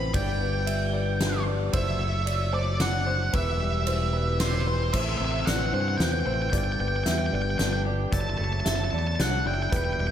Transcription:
Already playing: fingered electric bass A1, pedal steel guitar C3 A3 E4 G4 E5, clean electric guitar E3 B3 C4, felt piano C5, lead electric guitar B5
0.14 fingered electric bass G1, clean electric guitar G2, pedal steel guitar G3 B3 D4 D5, felt piano D5, lead electric guitar G5, kick, ride
0.41 clean electric guitar B3
0.66 clean electric guitar G3, felt piano E5, ride
0.93 clean electric guitar B3, felt piano D5
1.21 clean electric guitar D4, snare, ride
1.47 clean electric guitar G3, felt piano D5
1.72 fingered electric bass F#1, pedal steel guitar F#3 E4 A4, clean electric guitar F#3, felt piano C5, lead electric guitar E5, kick, ride
2.01 clean electric guitar A3
2.26 clean electric guitar F#3, felt piano D5, ride
2.53 clean electric guitar A3, felt piano C5, lead electric guitar D5
2.80 clean electric guitar D4, lead electric guitar F#5, snare, ride
3.06 clean electric guitar F#3, felt piano C5
3.33 fingered electric bass E1, clean electric guitar E2, pedal steel guitar B2 G3 G4 E5, felt piano B4, lead electric guitar E5, kick, ride
3.60 clean electric guitar G3
3.87 clean electric guitar E3, felt piano C5, ride
4.13 clean electric guitar G3, felt piano B4
4.40 lead electric guitar C5, snare, ride
4.67 clean electric guitar E3, felt piano B4
4.92 fingered electric bass A1, clean electric guitar A2, pedal steel guitar C3 A3 E4 A4 E5, felt piano C5, lead electric guitar E5, kick, crash
5.00 lead electric guitar E5
5.09 lead electric guitar E5
5.17 fingered electric bass A1, clean electric guitar C4, lead electric guitar E5
5.25 lead electric guitar E5
5.32 lead electric guitar E5
5.40 lead electric guitar E5
5.45 fingered electric bass A1, clean electric guitar E3, felt piano D5, lead electric guitar F#5, snare, closed hi-hat
5.53 lead electric guitar F#5
5.59 lead electric guitar F#5
5.66 lead electric guitar F#5
5.73 fingered electric bass G2, clean electric guitar C4, felt piano C5, lead electric guitar F#5
5.81 lead electric guitar F#5
5.88 lead electric guitar F#5
5.98 fingered electric bass E2, clean electric guitar B3, lead electric guitar G5, snare, closed hi-hat
6.04 lead electric guitar G5
6.12 lead electric guitar G5
6.20 lead electric guitar G5
6.26 fingered electric bass A1, clean electric guitar E4, felt piano C5, lead electric guitar G5
6.34 lead electric guitar G5
6.42 lead electric guitar G5
6.50 fingered electric bass G1, clean electric guitar G2, pedal steel guitar G3 B3 D4 D5, felt piano D5, lead electric guitar G5, kick, closed hi-hat
6.58 lead electric guitar G5
6.64 lead electric guitar G5
6.72 lead electric guitar G5
6.79 fingered electric bass G1, clean electric guitar B3, lead electric guitar G5
6.88 lead electric guitar G5
6.96 lead electric guitar G5
7.04 fingered electric bass E2, clean electric guitar G3, felt piano E5, lead electric guitar G5, snare, closed hi-hat
7.11 lead electric guitar G5
7.18 lead electric guitar G5
7.26 lead electric guitar G5
7.32 fingered electric bass G1, clean electric guitar B3, felt piano D5, lead electric guitar G5
7.42 lead electric guitar G5
7.50 lead electric guitar G5
7.58 fingered electric bass G1, clean electric guitar D4, lead electric guitar G5, snare, closed hi-hat
7.65 lead electric guitar G5
7.73 lead electric guitar G5
7.85 clean electric guitar G4, felt piano D5
8.11 fingered electric bass F#1, pedal steel guitar F#3 E4 A4 E5, clean electric guitar F#3, felt piano D5, lead electric guitar A5, kick, closed hi-hat
8.21 lead electric guitar A5
8.30 lead electric guitar A5
8.38 fingered electric bass F#1, clean electric guitar A3, lead electric guitar A5
8.44 lead electric guitar A5
8.53 lead electric guitar A5
8.60 lead electric guitar A5
8.65 fingered electric bass F#1, clean electric guitar F#3, felt piano E5, lead electric guitar A5, snare, closed hi-hat
8.76 lead electric guitar A5
8.84 lead electric guitar A5
8.91 fingered electric bass E2, clean electric guitar A3, felt piano D5, lead electric guitar A5
8.99 lead electric guitar A5
9.07 lead electric guitar A5
9.16 fingered electric bass C2, clean electric guitar D4, lead electric guitar A5
9.20 lead electric guitar F#5, snare, closed hi-hat
9.46 fingered electric bass F#1, clean electric guitar E4, felt piano D5, lead electric guitar G5
9.54 lead electric guitar G5
9.62 lead electric guitar G5
9.70 fingered electric bass E1, clean electric guitar E2, pedal steel guitar G3 B3 G4, felt piano B4, lead electric guitar G5, kick, closed hi-hat
9.77 lead electric guitar G5
9.85 lead electric guitar G5
9.93 lead electric guitar G5
9.99 fingered electric bass E1, clean electric guitar G3, lead electric guitar G5
10.07 lead electric guitar G5

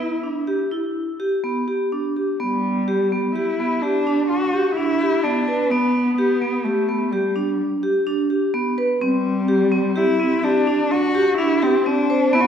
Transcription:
Already playing: cello E4
0.00 vibraphone E4
0.23 vibraphone D4
0.47 vibraphone G4
0.71 vibraphone E4
1.20 vibraphone G4
1.44 vibraphone B3
1.68 vibraphone G4
1.92 vibraphone D4
2.16 vibraphone G4
2.40 cello G3, vibraphone B3
2.88 vibraphone G4
3.12 vibraphone B3
3.36 cello E4, vibraphone G4
3.60 vibraphone B3
3.82 cello D4, vibraphone G4
4.07 vibraphone D4
4.29 cello F#4
4.53 vibraphone G4
4.76 vibraphone D4, cello E4
5.01 vibraphone G4
5.23 vibraphone B3, cello D4
5.48 vibraphone B4
5.71 cello B3, vibraphone B3
6.18 cello B3, vibraphone G4
6.42 vibraphone B3
6.65 cello A3, vibraphone G4
6.89 vibraphone B3
7.12 cello G3, vibraphone G4
7.36 vibraphone D4
7.83 vibraphone G4
8.07 vibraphone D4
8.30 vibraphone G4
8.54 vibraphone B3
8.78 vibraphone B4
9.01 cello G3, vibraphone C4
9.48 vibraphone G4
9.72 vibraphone C4
9.96 cello E4, vibraphone G4
10.20 vibraphone C4
10.44 cello D4, vibraphone G4
10.67 vibraphone D4
10.91 cello F#4
11.15 vibraphone G4
11.38 vibraphone D4, cello E4
11.62 cello C4, vibraphone G4
11.86 vibraphone C4, cello D4
12.10 vibraphone C5
12.33 vibraphone B3, cello E4
12.41 cello F#4

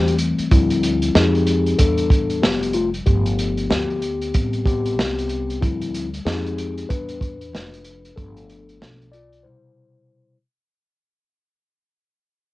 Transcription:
Already playing: upright bass E2, tine electric piano E3 G3 A3 C4 G4, alto saxophone C5
0.08 closed hi-hat
0.19 closed hi-hat
0.39 muted upright bass stroke, closed hi-hat
0.51 upright bass D2, tine electric piano F3 G3 C4 E4, kick, closed hi-hat
0.70 closed hi-hat
0.83 closed hi-hat
1.02 closed hi-hat
1.15 upright bass F2, tine electric piano G#3 C4 D#4 G4 G#4, snare
1.35 closed hi-hat
1.47 closed hi-hat
1.66 closed hi-hat
1.79 upright bass E2, tine electric piano G3 B3 D4 A4, kick, closed hi-hat
1.98 closed hi-hat
2.10 kick, closed hi-hat
2.30 closed hi-hat
2.43 upright bass F1, tine electric piano B3 G4, snare
2.63 closed hi-hat
2.73 tine electric piano A3 F4, closed hi-hat
2.94 closed hi-hat
3.06 upright bass G1, tine electric piano F3 A3 B3 G4, kick, closed hi-hat
3.26 closed hi-hat
3.39 closed hi-hat
3.58 closed hi-hat
3.70 upright bass D2, tine electric piano B3 G4, snare
3.90 closed hi-hat
4.02 closed hi-hat
4.22 closed hi-hat
4.34 upright bass A1, tine electric piano G3 B3 C4, kick, closed hi-hat
4.53 closed hi-hat
4.65 tine electric piano B3 G4, kick, closed hi-hat
4.86 closed hi-hat
4.97 upright bass C2, snare
5.18 closed hi-hat
5.29 closed hi-hat
5.50 closed hi-hat
5.61 upright bass D2, tine electric piano F3 G3 C4 E4, kick, closed hi-hat
5.81 closed hi-hat
5.94 closed hi-hat
6.14 closed hi-hat
6.25 upright bass F2, tine electric piano G#3 C4 D#4 G4 G#4, snare
6.46 closed hi-hat
6.58 closed hi-hat
6.78 closed hi-hat
6.89 upright bass E2, tine electric piano G3 B3 D4 B4, kick, closed hi-hat
7.09 closed hi-hat
7.21 kick, closed hi-hat
7.41 closed hi-hat
7.53 upright bass F1, snare
7.74 closed hi-hat
7.84 closed hi-hat
8.05 closed hi-hat
8.16 upright bass G1, tine electric piano F3 A3 B3 D4 A4, kick, closed hi-hat
8.37 closed hi-hat
8.50 closed hi-hat
8.69 closed hi-hat
8.81 upright bass B1, snare
9.02 closed hi-hat
9.12 tine electric piano F4 D5, closed hi-hat
9.33 closed hi-hat
9.43 tine electric piano B2 C3 G3 E4 C5

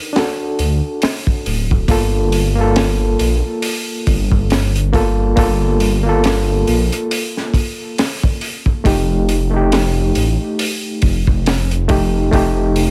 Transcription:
Already playing: reed electric piano D4 D#4 A#4
0.13 reed electric piano D4 F#4, snare, open hi-hat
0.18 reed electric piano A4
0.59 detuned saw bass D2, open hi-hat
1.02 snare, open hi-hat
1.27 kick
1.46 detuned saw bass D1, open hi-hat
1.71 kick
1.88 detuned saw bass G1, reed electric piano A#3 F4 A4, kick, open hi-hat
2.32 open hi-hat
2.55 reed electric piano A#3 F4
2.61 reed electric piano A4
2.76 snare, open hi-hat
3.19 detuned saw bass A#1, open hi-hat
3.62 open hi-hat
4.07 detuned saw bass G1, kick, open hi-hat
4.32 kick
4.50 snare, open hi-hat
4.76 closed hi-hat
4.93 reed electric piano A#3 F4 A4, kick, open hi-hat
5.36 detuned saw bass G1, reed electric piano A#3 F4 A4, kick, open hi-hat
5.80 open hi-hat
6.03 reed electric piano A#3 F4
6.09 reed electric piano A4
6.24 snare, open hi-hat
6.67 detuned saw bass A#1, open hi-hat
6.92 closed hi-hat
7.11 open hi-hat
7.37 snare
7.54 kick, open hi-hat
7.98 snare, open hi-hat
8.23 kick
8.41 open hi-hat
8.66 kick
8.84 detuned saw bass F1, reed electric piano A3 D#4 G4, kick, open hi-hat
9.29 open hi-hat
9.51 reed electric piano A3 D#4
9.57 reed electric piano G4
9.72 snare, open hi-hat
10.15 detuned saw bass A1, open hi-hat
10.59 open hi-hat
11.02 detuned saw bass F1, kick, open hi-hat
11.27 kick
11.46 snare, open hi-hat
11.71 closed hi-hat
11.88 reed electric piano A3 D#4 G4, kick, open hi-hat
12.31 detuned saw bass F1, reed electric piano A3 D#4 G4, kick, open hi-hat
12.76 open hi-hat

